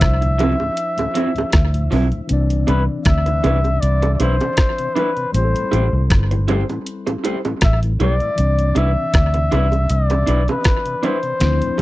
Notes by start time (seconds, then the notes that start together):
Already playing: F3 D4 E4 C5 E5
0.01 C2, kick, cross-stick, closed hi-hat
0.21 D2 A2, muted clean electric guitar stroke, closed hi-hat
0.38 F3 C4 E4, closed hi-hat, high bongo, low bongo
0.60 D2 A2, high bongo
0.77 closed hi-hat
0.97 D2 A2, closed hi-hat, high bongo
1.14 F3 C4 E4, closed hi-hat, high bongo
1.34 D2 A2, closed hi-hat, high bongo
1.52 D2, kick, cross-stick, closed hi-hat
1.74 D2 A2, closed hi-hat
1.91 B1 F3 C4 E4, open hi-hat, low bongo
2.12 D2 A2, closed hi-hat
2.27 C2 E3 C4 D4, closed hi-hat
2.33 D5
2.50 C3, closed hi-hat
2.67 C2 E3 B3 D4 E4 B4, closed hi-hat, high bongo
2.89 C3
3.05 D2 E5, kick, cross-stick, closed hi-hat
3.26 C3, muted clean electric guitar stroke, closed hi-hat
3.44 C2 E3 B3 D4 E4 B4, closed hi-hat, high bongo, low bongo
3.64 C3, closed hi-hat, high bongo
3.81 C2 D5, closed hi-hat
4.02 C3, muted clean electric guitar stroke, closed hi-hat, high bongo
4.14 D5
4.20 B1 E3 B3 D4 E4 B4 C5, closed hi-hat, high bongo
4.40 C3, closed hi-hat, high bongo
4.57 kick, cross-stick, closed hi-hat
4.78 C3, closed hi-hat
4.95 E3 B3 D4 E4 B4, closed hi-hat, low bongo
5.17 C3, closed hi-hat
5.32 A1 G3 C4 E4 C5, closed hi-hat
5.38 G4
5.44 A4
5.56 A2 E3, closed hi-hat
5.71 A1 G3 A3 C4 E4 G4 C5, closed hi-hat, high bongo
5.93 C2 A2 E3
6.10 G1, kick, cross-stick, closed hi-hat
6.31 A2 E3, muted clean electric guitar stroke, closed hi-hat
6.48 G3 A3 C4 E4 G4 C5, closed hi-hat, high bongo, low bongo
6.69 A2 E3, closed hi-hat, high bongo
6.86 closed hi-hat
7.07 A2 E3, muted clean electric guitar stroke, closed hi-hat, high bongo
7.24 G3 A3 C4 E4 G4 C5, closed hi-hat, high bongo
7.45 A2 E3, closed hi-hat, high bongo
7.61 A1 E5, kick, cross-stick, closed hi-hat
7.83 A2 E3, closed hi-hat
8.00 B1 G3 A3 C4 E4 G4 C5 D5, closed hi-hat, low bongo
8.20 A2 E3, closed hi-hat
8.35 C2 E3 C4, closed hi-hat
8.40 D4 D5
8.59 C3, closed hi-hat
8.75 C2 E3 B3 D4 E4 B4 E5, closed hi-hat, high bongo
8.97 C3
9.14 D2, kick, cross-stick, closed hi-hat
9.34 C3, muted clean electric guitar stroke, closed hi-hat
9.51 C2 E3 B3 D4 E4 B4, closed hi-hat, high bongo, low bongo
9.72 C3, closed hi-hat, high bongo
9.89 C2 D5, closed hi-hat
10.10 C3, muted clean electric guitar stroke, closed hi-hat, high bongo
10.26 B1 E3 B3 D4 E4 B4, closed hi-hat, high bongo
10.47 C3 B4, closed hi-hat, high bongo
10.64 kick, cross-stick, closed hi-hat
10.86 C3, closed hi-hat
11.02 E3 B3 D4 E4 B4 C5, closed hi-hat, low bongo
11.23 C3, closed hi-hat
11.39 D2 F3 D4 E4, snare, closed hi-hat
11.45 C4
11.62 D2 A2, closed hi-hat
11.78 F3, high bongo